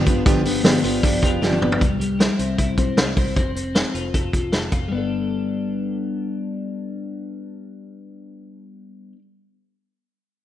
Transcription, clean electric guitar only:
0.00 0.25 F3 medium
0.00 0.64 D4 medium
0.00 0.82 F4 medium
0.07 0.44 B3 medium
0.26 1.80 F3 medium
0.46 1.60 B3 medium
0.65 1.02 D4 medium
0.84 1.21 F4 medium
1.03 1.41 D4 medium
1.22 1.84 F4 medium
1.42 1.85 D4 medium
1.61 1.85 B3 medium
1.81 1.99 G3 medium
2.00 3.40 G3 medium
2.19 2.57 E4 medium
2.39 2.77 C4 soft
2.58 2.97 E4 medium
2.78 3.15 C4 medium
2.97 3.07 D4 medium
3.07 3.40 E4 soft
3.17 3.35 C4 medium
3.36 3.54 C4 medium
3.55 4.92 C4 medium
3.75 4.14 A4 medium
3.94 4.32 F4 soft
4.14 4.52 A4 medium
4.33 4.71 F4 soft
4.52 4.97 A4 medium
4.72 4.94 F4 soft
4.88 9.12 G3 medium
4.88 9.16 B3 medium
4.95 9.19 D4 medium
4.95 9.22 A4 medium

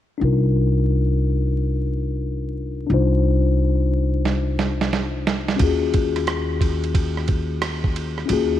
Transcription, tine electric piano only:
0.18 2.85 D4 medium
0.18 2.86 D#4 medium
0.22 2.87 F4 medium
0.22 2.89 A#4 medium
2.87 5.54 D4 medium
2.87 5.56 D#4 medium
2.91 5.57 F4 medium
2.91 5.58 C5 medium
5.56 8.24 C#4 medium
5.56 8.25 F4 medium
5.61 8.26 F#4 medium
5.61 8.28 G#4 medium
8.26 8.60 C#4 medium
8.26 8.60 F4 medium
8.31 8.60 F#4 medium
8.31 8.60 G#4 medium

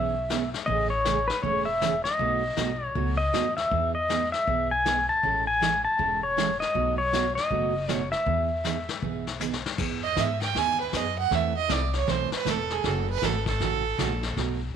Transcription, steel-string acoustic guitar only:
0.00 0.13 E3 medium
0.00 0.14 B3 medium
0.00 0.14 C#4 medium
0.00 0.14 G#4 medium
0.30 0.41 E3 medium
0.30 0.41 B3 medium
0.30 0.42 C#4 medium
0.30 0.42 G#4 medium
0.67 0.89 C#3 medium
0.67 0.89 E3 medium
0.67 0.89 A3 medium
0.67 0.89 C#4 medium
0.67 0.90 G#4 medium
1.05 1.17 C#3 medium
1.05 1.17 E3 medium
1.05 1.17 A3 medium
1.05 1.17 C#4 medium
1.05 1.18 G#4 medium
1.44 1.65 C#3 medium
1.44 1.65 E3 medium
1.44 1.65 A3 medium
1.44 1.66 C#4 medium
1.44 1.66 G#4 medium
1.81 1.93 C#3 medium
1.81 1.93 E3 medium
1.81 1.93 A3 medium
1.81 1.93 C#4 medium
1.81 1.93 G#4 medium
2.19 2.41 B2 medium
2.19 2.41 F#3 medium
2.19 2.41 A3 medium
2.19 2.41 D#4 medium
2.19 2.42 F#4 medium
2.57 2.69 B2 medium
2.57 2.69 F#3 medium
2.57 2.69 A3 medium
2.57 2.69 D#4 medium
2.57 2.69 F#4 medium
2.95 3.17 B2 medium
2.95 3.17 F#3 medium
2.95 3.17 A3 medium
2.95 3.17 D#4 medium
2.95 3.17 F#4 medium
3.33 3.44 B2 medium
3.33 3.45 F#3 medium
3.33 3.45 A3 medium
3.33 3.45 D#4 medium
3.33 3.45 F#4 medium
3.71 3.93 E3 medium
3.71 3.93 B3 medium
3.71 3.93 D#4 medium
3.71 3.93 G#4 medium
4.08 4.20 E3 medium
4.08 4.21 B3 medium
4.08 4.21 D#4 medium
4.08 4.21 G#4 medium
4.47 4.69 E3 medium
4.47 4.69 B3 medium
4.47 4.69 D#4 medium
4.47 4.69 G#4 medium
4.85 4.97 E3 medium
4.85 4.97 B3 medium
4.85 4.97 D#4 medium
4.85 4.97 G#4 medium
5.23 5.45 E3 medium
5.23 5.45 G#3 medium
5.23 5.45 C#4 medium
5.23 5.45 E4 medium
5.23 5.46 A4 medium
5.61 5.72 E3 medium
5.61 5.72 G#3 medium
5.61 5.73 C#4 medium
5.61 5.73 E4 medium
5.61 5.73 A4 medium
5.98 6.20 E3 medium
5.98 6.20 G#3 medium
5.98 6.20 C#4 medium
5.98 6.21 E4 medium
5.98 6.21 A4 medium
6.37 6.48 E3 medium
6.37 6.49 G#3 medium
6.37 6.49 C#4 medium
6.37 6.49 E4 medium
6.37 6.49 A4 medium
6.74 6.96 B2 medium
6.74 6.96 F#3 medium
6.74 6.96 A3 medium
6.74 6.97 D#4 medium
6.74 6.97 F#4 medium
7.12 7.24 B2 medium
7.12 7.24 F#3 medium
7.12 7.25 A3 medium
7.12 7.25 D#4 medium
7.12 7.25 F#4 medium
7.50 7.72 B2 medium
7.50 7.72 F#3 medium
7.50 7.72 A3 medium
7.50 7.73 D#4 medium
7.50 7.73 F#4 medium
7.88 8.00 B2 medium
7.88 8.00 F#3 medium
7.88 8.00 A3 medium
7.88 8.01 D#4 medium
7.88 8.01 F#4 medium
8.26 8.48 E3 medium
8.26 8.48 B3 medium
8.26 8.48 D#4 medium
8.26 8.49 G#4 medium
8.64 8.76 E3 medium
8.64 8.76 B3 medium
8.64 8.76 D#4 medium
8.64 8.77 G#4 medium
9.02 9.24 E3 medium
9.02 9.24 B3 medium
9.02 9.24 D#4 medium
9.02 9.25 G#4 medium
9.40 9.52 E3 medium
9.40 9.52 B3 medium
9.40 9.52 D#4 medium
9.40 9.53 G#4 medium
9.77 10.00 E3 medium
9.77 10.00 B3 medium
9.77 10.00 D#4 medium
9.77 10.01 G#4 medium
10.15 10.28 E3 medium
10.15 10.28 B3 medium
10.15 10.28 D#4 medium
10.15 10.28 G#4 medium
10.54 10.76 E3 medium
10.54 10.77 B3 medium
10.54 10.77 D#4 medium
10.54 10.77 G#4 medium
10.92 11.04 E3 medium
10.92 11.04 B3 medium
10.92 11.05 D#4 medium
10.92 11.05 G#4 medium
11.30 11.52 E3 medium
11.30 11.53 A3 medium
11.30 11.53 C4 medium
11.30 11.53 E4 medium
11.30 11.53 B4 medium
11.69 11.80 E3 medium
11.69 11.81 A3 medium
11.69 11.81 C4 medium
11.69 11.81 E4 medium
11.69 11.81 B4 medium
12.06 12.28 E3 medium
12.06 12.29 A3 medium
12.06 12.29 C4 medium
12.06 12.29 E4 medium
12.06 12.29 B4 medium
12.44 12.57 E3 medium
12.44 12.57 A3 medium
12.44 12.57 C4 medium
12.44 12.57 E4 medium
12.44 12.57 B4 medium
12.84 13.05 C#3 medium
12.84 13.05 E3 medium
12.84 13.06 A3 medium
12.84 13.06 C#4 medium
12.84 13.06 F#4 medium
13.22 13.33 C#3 medium
13.22 13.34 E3 medium
13.22 13.34 A3 medium
13.22 13.34 C#4 medium
13.22 13.34 F#4 medium
13.60 13.82 C#3 medium
13.60 13.82 E3 medium
13.60 13.82 A3 medium
13.60 13.82 C#4 medium
13.60 13.82 F#4 medium
13.98 14.10 C#3 medium
13.98 14.10 E3 medium
13.98 14.10 A3 medium
13.98 14.10 C#4 medium
13.98 14.10 F#4 medium
14.36 14.58 B2 medium
14.36 14.58 F#3 medium
14.36 14.58 A3 medium
14.36 14.59 D#4 medium
14.36 14.59 F#4 medium

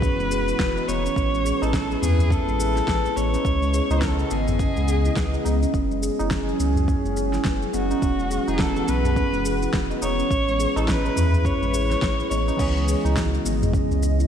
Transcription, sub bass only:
0.19 0.53 E1 medium
0.59 0.79 E1 medium
0.88 1.08 E1 medium
1.16 1.52 A1 medium
1.62 1.95 A1 medium
2.02 2.38 E2 medium
2.48 2.81 A1 loud
2.88 3.08 A1 medium
3.16 3.37 A1 medium
3.45 3.81 C#2 loud
3.90 4.24 C#2 medium
4.31 4.67 G#1 medium
4.77 5.10 C#2 medium
5.17 5.37 C#2 medium
5.45 5.65 C#2 medium
5.74 6.10 F#1 medium
6.20 6.53 F#1 medium
6.59 6.95 C#2 medium
7.05 7.38 F#1 medium
7.45 7.65 F#1 medium
7.74 7.94 F#1 medium
8.02 8.38 E1 loud
8.48 8.81 E1 medium
8.88 9.24 B1 medium
9.33 9.67 E1 medium
9.73 9.94 E1 medium
10.02 10.22 E1 medium
10.31 10.66 A1 loud
10.76 11.10 A1 medium
11.16 11.52 E2 medium
11.62 11.96 A1 loud
12.02 12.22 A1 medium
12.31 12.51 A1 medium
12.59 12.95 C#2 loud
13.05 13.38 C#2 medium
13.45 13.81 G#1 medium
13.91 14.24 C#2 loud

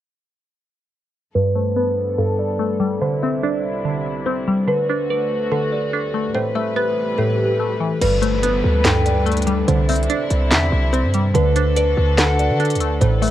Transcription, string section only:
1.35 3.00 G2 medium
1.35 3.00 D3 medium
1.35 3.00 B3 medium
1.35 3.00 A4 medium
3.01 4.66 C2 medium
3.01 4.66 C3 medium
3.01 4.66 D4 medium
3.01 4.66 E4 medium
4.68 6.33 D2 medium
4.68 6.33 D3 medium
4.68 6.33 A3 medium
4.68 6.33 F#4 medium
6.35 8.00 A2 medium
6.35 8.00 C3 medium
6.35 8.00 E3 medium
6.35 8.00 B4 medium
8.01 9.67 G3 medium
8.01 11.31 D4 medium
8.01 9.67 A4 medium
8.01 9.66 B4 medium
9.68 11.33 C3 medium
9.68 11.33 C4 medium
9.68 11.33 E4 loud
11.35 13.00 D3 medium
11.35 13.00 D4 medium
11.35 13.00 F#4 medium
11.35 13.00 A4 medium
13.02 13.31 A3 medium
13.02 13.31 E4 medium
13.02 13.31 A4 medium
13.02 13.31 B4 medium

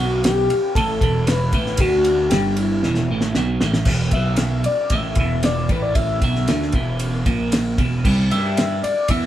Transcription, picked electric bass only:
0.00 0.47 B1 medium
0.51 muted picked electric bass stroke soft
0.76 1.00 A1 medium
1.02 1.50 E1 medium
1.53 1.78 A1 medium
1.79 2.28 D2 medium
2.31 2.80 G1 medium
2.83 3.08 E1 medium
3.10 3.34 A1 loud
3.35 3.60 B1 medium
3.60 3.85 A1 medium
3.86 4.11 E1 medium
4.12 4.62 B1 medium
4.66 muted picked electric bass stroke soft
4.91 5.16 A1 medium
5.17 5.66 E1 medium
5.70 6.19 A1 medium
6.22 6.47 B1 medium
6.49 6.73 D2 medium
6.74 7.23 E1 loud
7.26 7.75 A#1 medium
7.78 8.03 E1 medium
8.05 8.29 C2 medium
8.32 8.80 G2 medium
8.84 muted picked electric bass stroke soft
9.09 9.26 E2 medium

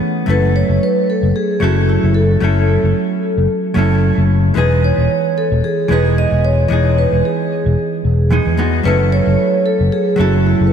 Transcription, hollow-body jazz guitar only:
0.00 0.25 E3 medium
0.00 0.25 A3 medium
0.00 0.26 B3 medium
0.00 0.26 C#4 medium
0.00 0.27 G#4 loud
0.26 1.58 F#3 medium
0.26 1.59 A3 medium
0.26 1.59 C#4 medium
0.26 1.60 E4 medium
0.30 1.60 A4 medium
1.60 2.39 F#3 medium
1.60 2.39 A3 medium
1.60 2.40 C#4 medium
1.60 2.40 E4 medium
1.60 2.40 A4 medium
2.40 3.73 F#3 medium
2.40 3.73 A3 medium
2.40 3.73 C#4 medium
2.40 3.74 E4 medium
2.44 3.75 A4 medium
3.74 4.53 F#3 medium
3.74 4.53 A3 medium
3.74 4.54 C#4 medium
3.74 4.54 E4 medium
3.78 4.55 A4 medium
4.54 5.87 E3 medium
4.54 5.87 G#3 medium
4.54 5.88 B3 medium
4.54 5.88 D#4 medium
4.58 5.89 G#4 medium
5.88 6.67 E3 medium
5.88 6.67 G#3 medium
5.88 6.68 B3 medium
5.88 6.69 D#4 medium
5.93 6.69 G#4 medium
6.68 8.01 E3 medium
6.68 8.02 G#3 medium
6.68 8.02 B3 medium
6.68 8.03 D#4 medium
6.73 8.03 G#4 medium
8.31 8.55 E3 medium
8.31 8.56 G#3 medium
8.31 8.56 B3 medium
8.31 8.56 D#4 medium
8.31 8.56 G#4 medium
8.57 8.82 E3 medium
8.57 8.82 G#3 medium
8.57 8.82 B3 medium
8.57 8.83 D#4 medium
8.57 8.83 F#4 medium
8.83 10.15 F#3 medium
8.83 10.16 A3 medium
8.83 10.16 C#4 medium
8.83 10.17 E4 medium
8.83 10.17 A4 medium
10.16 10.73 F#3 medium
10.16 10.73 A3 medium
10.16 10.73 C#4 medium
10.16 10.73 E4 medium
10.21 10.73 A4 medium

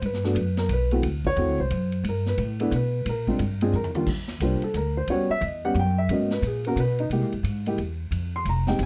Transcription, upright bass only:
0.02 0.34 G2 medium
0.35 0.68 F#2 medium
0.69 1.02 B1 medium
1.02 1.36 D2 medium
1.36 1.47 E2 medium
1.47 1.58 D2 soft
1.59 1.70 C2 medium
1.70 2.03 F#2 medium
2.04 2.37 G2 medium
2.38 2.71 A2 medium
2.71 3.04 B2 loud
3.05 3.38 A#2 medium
3.39 3.72 G2 loud
3.72 4.06 F2 medium
4.06 4.39 D#2 medium
4.40 4.60 C2 medium
4.62 muted upright bass stroke soft
4.74 5.07 D2 medium
5.07 5.28 D#2 medium
5.29 muted upright bass stroke soft
5.41 5.74 E2 medium
5.74 6.08 F#2 loud
6.08 6.41 G#2 medium
6.42 6.75 A#2 medium
6.76 7.09 B2 medium
7.10 7.22 C3 medium
7.22 7.32 A#2 medium
7.33 7.43 G2 medium
7.43 7.77 G#2 medium
7.78 8.10 E2 medium
8.11 8.44 F2 medium
8.45 8.78 F1 medium
8.79 8.86 G1 loud

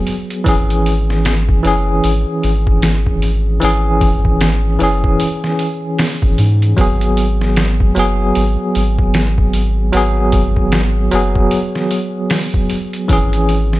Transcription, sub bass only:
0.46 1.62 G#1 loud
1.65 2.00 F#1 loud
2.04 2.25 G#1 medium
2.44 3.59 G#1 loud
3.63 4.78 G#1 loud
4.81 5.16 F#1 loud
6.23 6.37 G#1 medium
6.38 6.74 G#2 medium
6.78 7.93 G#1 loud
7.96 8.32 F#1 loud
8.36 8.57 G#1 medium
8.76 9.91 G#1 loud
9.94 11.09 G#1 loud
11.13 11.48 F#1 loud
13.10 13.80 G#1 loud

